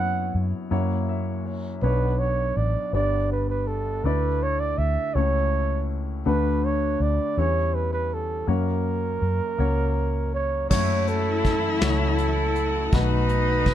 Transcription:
0.00 0.67 F#1 soft
0.00 0.30 F#2 medium
0.00 0.67 F#2 soft
0.00 0.30 B3 medium
0.00 0.30 E4 medium
0.00 0.30 F#4 medium
0.00 0.30 C#5 medium
0.00 0.44 F#5 medium
0.35 0.52 F#2 medium
0.71 1.79 F#1 medium
0.71 1.79 F#2 medium
0.71 1.41 A#3 medium
0.71 1.41 E4 medium
0.71 1.42 F#4 medium
0.71 1.42 C#5 medium
1.09 1.43 E5 medium
1.46 1.80 C#5 medium
1.82 2.53 B1 medium
1.82 2.91 B1 medium
1.82 2.91 B2 soft
1.82 2.53 B3 medium
1.82 2.53 D4 medium
1.82 2.54 F#4 medium
1.82 2.21 B4 medium
1.82 2.54 C#5 medium
2.19 2.58 C#5 medium
2.57 2.74 A1 medium
2.57 2.94 D5 medium
2.93 4.00 G1 medium
2.93 4.01 G1 medium
2.93 4.01 G2 medium
2.93 3.64 B3 medium
2.93 3.64 D4 soft
2.93 3.64 G4 soft
2.93 3.65 D5 medium
2.93 3.29 D5 medium
3.32 3.49 B4 medium
3.50 3.69 B4 medium
3.67 4.07 A4 medium
4.04 4.74 D2 medium
4.04 5.12 D2 soft
4.04 5.12 D3 soft
4.04 4.75 A3 medium
4.04 4.75 D4 medium
4.04 4.75 E4 medium
4.04 4.45 B4 medium
4.04 4.75 D5 medium
4.43 4.61 C#5 medium
4.60 4.80 D5 medium
4.78 4.96 D2 medium
4.78 5.16 E5 medium
5.15 6.22 C#2 medium
5.15 6.22 C#3 medium
5.15 5.85 A3 medium
5.15 5.85 C#4 medium
5.15 5.86 E4 medium
5.15 5.98 C#5 medium
5.15 5.86 C#5 medium
6.26 6.96 D2 medium
6.26 7.33 D2 medium
6.26 7.33 D3 medium
6.26 6.96 A3 medium
6.26 6.96 D4 medium
6.26 6.97 F#4 medium
6.26 6.66 B4 medium
6.26 6.97 B4 medium
6.65 7.04 C#5 medium
7.00 7.18 D2 medium
7.00 7.40 D5 medium
7.37 8.44 E2 medium
7.37 8.45 E3 medium
7.37 8.07 G3 medium
7.37 8.08 C#4 medium
7.37 8.08 E4 medium
7.37 8.08 C#5 medium
7.37 7.76 C#5 medium
7.75 7.92 B4 medium
7.93 8.15 B4 medium
8.14 8.49 A4 medium
8.47 10.66 F#1 soft
8.47 9.18 F#2 medium
8.47 10.67 F#2 soft
8.47 9.18 A#3 medium
8.47 9.18 C#4 medium
8.47 9.18 F#4 medium
8.47 10.30 A#4 medium
8.47 9.18 C#5 medium
9.22 9.39 F#2 medium
9.58 10.66 C#2 medium
9.58 10.29 A#3 medium
9.58 10.29 C#4 medium
9.58 10.30 F#4 medium
9.58 10.30 C#5 medium
10.34 10.69 C#5 medium
10.70 12.89 F#1 medium
10.70 11.78 F#2 medium
10.70 12.89 F#2 medium
10.70 12.91 E3 medium
10.70 13.74 F#3 medium
10.70 11.41 A3 medium
10.70 12.91 A3 medium
10.70 12.91 C#4 medium
10.70 11.41 E4 medium
10.70 12.95 E4 medium
10.70 11.41 F#4 medium
10.70 13.74 F#4 medium
10.70 11.10 C#5 medium
10.70 11.41 C#5 medium
10.70 kick medium
10.70 crash medium
11.07 11.82 A4 medium
11.07 closed hi-hat medium
11.45 kick medium
11.45 closed hi-hat soft
11.81 12.88 C#2 medium
11.81 12.52 A3 medium
11.81 12.52 E4 medium
11.81 12.52 F#4 medium
11.81 12.96 A4 medium
11.81 12.52 C#5 medium
11.81 snare medium
11.81 closed hi-hat medium
12.18 closed hi-hat soft
12.56 closed hi-hat soft
12.92 13.74 B1 medium
12.92 13.74 B2 medium
12.92 13.74 D#3 medium
12.92 13.74 A3 medium
12.92 13.62 A3 medium
12.92 13.74 B3 medium
12.92 13.63 D#4 medium
12.92 13.74 D#4 medium
12.92 13.63 F#4 medium
12.92 13.63 B4 medium
12.92 13.74 B4 medium
12.92 kick medium
12.92 closed hi-hat medium
13.29 closed hi-hat soft
13.66 kick medium
13.66 closed hi-hat soft

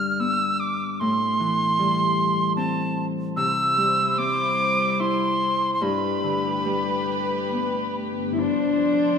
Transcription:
0.00 1.05 G2 soft
0.00 1.05 D3 soft
0.00 1.05 G3 soft
0.00 0.19 B3 soft
0.00 0.21 F6 medium
0.19 2.63 B3 soft
0.19 0.61 E6 medium
0.60 1.01 D6 medium
1.00 3.42 A2 soft
1.00 2.56 C6 medium
1.40 3.42 E3 soft
1.79 3.42 G3 soft
2.56 4.17 C4 soft
2.56 3.06 A5 medium
3.36 5.88 C3 soft
3.36 5.80 G3 medium
3.36 5.80 E4 medium
3.36 5.80 C5 medium
3.36 4.20 E6 medium
3.77 5.88 G3 soft
4.18 7.18 C4 soft
4.18 4.92 D6 medium
4.92 5.02 D6 medium
4.99 7.61 E4 soft
4.99 5.73 C6 medium
5.74 5.84 C6 soft
5.81 8.44 G2 soft
5.81 8.36 A3 medium
5.81 8.36 G4 medium
5.81 8.36 B4 medium
5.81 7.96 B5 medium
6.23 8.44 D3 soft
6.65 8.44 G3 soft
7.52 9.19 B3 soft
8.33 8.40 E4 soft
8.39 9.19 F3 medium
8.39 9.19 D4 medium
8.39 9.19 C5 medium

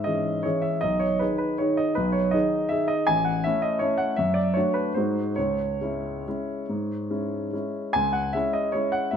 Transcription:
0.00 0.47 G#2 soft
0.00 0.47 E5 soft
0.04 0.41 E3 soft
0.04 0.41 C#4 soft
0.04 0.42 G#4 soft
0.04 0.44 D#5 medium
0.43 0.80 E3 soft
0.43 0.80 C#4 soft
0.43 0.80 G#4 soft
0.43 0.63 C#5 medium
0.62 0.82 E5 medium
0.81 1.21 B1 soft
0.81 1.01 D#5 medium
1.00 1.20 C#5 medium
1.19 1.57 D#3 soft
1.19 1.57 D#4 soft
1.19 1.57 G#4 soft
1.19 1.37 B4 medium
1.38 1.59 B4 medium
1.58 1.93 D#3 soft
1.58 1.94 D#4 soft
1.58 1.94 G#4 soft
1.58 1.78 C#5 medium
1.77 1.96 D#5 medium
1.95 2.33 B1 soft
1.95 2.15 B4 medium
2.12 2.33 C#5 medium
2.31 2.68 D#3 soft
2.31 2.68 D#4 soft
2.31 2.68 G#4 soft
2.31 2.70 D#5 medium
2.69 3.04 D#3 soft
2.69 3.05 D#4 soft
2.69 3.05 G#4 soft
2.69 2.89 E5 medium
2.88 3.07 D#5 medium
3.07 3.44 A1 soft
3.07 3.26 G#5 medium
3.25 3.44 F#5 medium
3.44 3.79 A3 soft
3.44 3.79 C#4 soft
3.44 3.79 E4 soft
3.44 3.63 E5 medium
3.62 3.81 D#5 medium
3.79 4.15 A3 soft
3.79 4.15 C#4 soft
3.79 4.15 E4 soft
3.79 3.99 C#5 medium
3.98 4.17 F#5 medium
4.16 4.54 F#2 soft
4.16 4.36 E5 medium
4.34 4.54 D5 medium
4.54 4.91 A3 soft
4.54 4.92 D4 soft
4.54 4.92 F#4 soft
4.54 4.74 C#5 medium
4.74 4.95 B4 medium
4.94 5.37 G#2 soft
4.94 5.34 G#3 soft
4.94 5.34 D#4 soft
4.94 5.34 F#4 soft
4.94 5.37 C5 medium
5.36 5.79 C#2 soft
5.36 7.53 C#5 medium
5.81 6.22 G#3 soft
5.81 6.22 C#4 soft
5.81 6.23 E4 soft
6.27 6.65 G#3 soft
6.27 6.65 C#4 soft
6.27 6.65 E4 soft
6.69 7.09 G#2 soft
7.10 7.50 G#3 soft
7.10 7.50 C#4 soft
7.10 7.50 E4 soft
7.53 7.92 G#3 soft
7.53 7.92 C#4 soft
7.53 7.92 E4 soft
7.93 8.34 C#2 soft
7.93 8.14 G#5 medium
8.13 8.34 F#5 medium
8.33 8.70 G#3 soft
8.33 8.71 C#4 soft
8.33 8.71 E4 soft
8.33 8.54 E5 medium
8.53 8.74 D#5 medium
8.72 9.09 G#3 soft
8.72 9.10 C#4 soft
8.72 9.10 E4 soft
8.72 8.93 C#5 medium
8.92 9.12 F#5 medium
9.11 9.17 G#2 soft
9.11 9.17 E5 medium

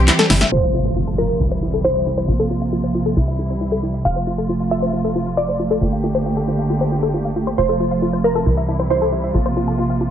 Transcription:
0.00 0.11 C2 medium
0.00 0.51 E3 medium
0.00 0.51 G3 medium
0.00 0.51 C4 medium
0.00 0.51 G4 medium
0.08 0.13 E4 medium
0.08 snare medium
0.08 clap loud
0.08 closed hi-hat medium
0.19 0.26 A4 loud
0.19 snare medium
0.19 closed hi-hat medium
0.30 0.44 G1 medium
0.30 0.35 E4 medium
0.30 snare medium
0.30 open hi-hat loud
0.41 0.46 E5 medium
0.41 snare medium
0.41 closed hi-hat medium
0.52 1.38 F1 medium
0.52 5.78 C3 medium
0.52 1.40 F3 medium
0.52 1.40 A3 medium
0.52 1.40 F4 medium
0.52 0.57 F4 medium
0.52 1.10 C5 loud
0.52 impact medium
0.63 0.68 F5 medium
0.74 0.77 F4 medium
0.85 0.88 C5 medium
0.96 1.01 F4 medium
1.07 1.14 A4 loud
1.18 1.23 F4 medium
1.18 1.76 A#4 medium
1.29 1.34 F5 medium
1.40 2.26 C2 medium
1.40 2.28 E3 medium
1.40 2.28 G3 medium
1.40 2.28 E4 medium
1.40 1.43 E4 medium
1.52 1.54 C5 medium
1.63 1.67 E4 medium
1.74 1.80 A4 loud
1.85 1.89 E4 medium
1.85 3.96 C5 medium
1.96 2.00 E5 medium
2.07 2.09 E4 medium
2.18 2.20 C5 loud
2.29 3.15 A#1 medium
2.29 3.16 F3 medium
2.29 3.16 A#3 medium
2.29 2.33 F4 medium
2.29 3.16 F4 medium
2.40 2.46 A4 loud
2.51 2.55 F4 medium
2.62 2.66 F5 medium
2.73 2.75 F4 medium
2.84 2.86 C5 loud
2.95 2.99 F4 medium
3.06 3.13 A4 loud
3.17 4.03 C2 medium
3.17 4.04 E3 medium
3.17 4.04 G3 medium
3.17 3.21 E4 medium
3.17 4.04 E4 medium
3.28 3.32 E5 medium
3.39 3.42 E4 medium
3.50 3.53 C5 loud
3.61 3.65 E4 medium
3.72 3.79 A4 loud
3.83 3.88 E4 medium
3.94 3.99 E5 medium
4.05 5.79 F1 medium
4.05 5.80 F3 medium
4.05 8.42 A3 medium
4.05 4.08 F4 medium
4.05 5.80 F4 medium
4.05 4.62 F5 medium
4.16 4.19 C5 loud
4.27 4.32 F4 medium
4.38 4.45 A4 loud
4.49 4.54 F4 medium
4.60 4.65 F5 medium
4.71 4.74 F4 medium
4.71 5.29 E5 medium
4.82 4.85 C5 loud
4.93 4.98 F4 medium
5.04 5.11 A4 medium
5.16 5.20 F4 medium
5.27 5.31 F5 medium
5.37 5.40 F4 medium
5.37 7.49 D5 medium
5.49 5.51 C5 loud
5.60 5.64 F4 medium
5.71 5.77 A4 medium
5.82 7.56 G1 medium
5.82 7.56 D3 medium
5.82 7.56 A#3 medium
5.82 5.86 F4 medium
5.82 7.56 G4 medium
5.93 5.97 F5 medium
6.04 6.06 F4 medium
6.15 6.17 C5 loud
6.26 6.30 F4 medium
6.37 6.44 A4 loud
6.48 6.52 F4 medium
6.59 6.63 F5 medium
6.70 6.73 F4 medium
6.81 6.84 C5 medium
6.92 6.96 F4 medium
7.03 7.10 A4 loud
7.14 7.18 F4 medium
7.25 7.29 F5 medium
7.36 7.39 F4 medium
7.47 7.50 C5 loud
7.58 8.44 F1 medium
7.58 10.11 C3 medium
7.58 8.45 F3 medium
7.58 7.63 F4 medium
7.58 8.45 F4 medium
7.58 8.15 C5 medium
7.69 7.76 A4 medium
7.80 7.85 F4 medium
7.91 7.96 F5 medium
8.02 8.05 F4 medium
8.13 8.16 C5 loud
8.24 8.29 F4 medium
8.24 8.82 A#4 medium
8.35 8.42 A4 loud
8.46 9.32 C2 medium
8.46 9.34 E3 medium
8.46 9.34 G3 medium
8.46 8.51 E4 medium
8.46 9.34 E4 medium
8.57 8.62 E5 medium
8.68 8.71 E4 medium
8.79 8.82 C5 loud
8.90 8.95 E4 medium
8.90 10.11 C5 medium
9.02 9.08 A4 loud
9.13 9.17 E4 medium
9.24 9.28 E5 medium
9.35 10.11 A#1 medium
9.35 10.11 F3 medium
9.35 10.11 A#3 medium
9.35 10.11 F4 medium
9.35 9.37 F4 medium
9.46 9.48 C5 medium
9.57 9.61 F4 medium
9.68 9.74 A4 loud
9.79 9.83 F4 medium
9.90 9.94 F5 medium
10.01 10.04 F4 medium

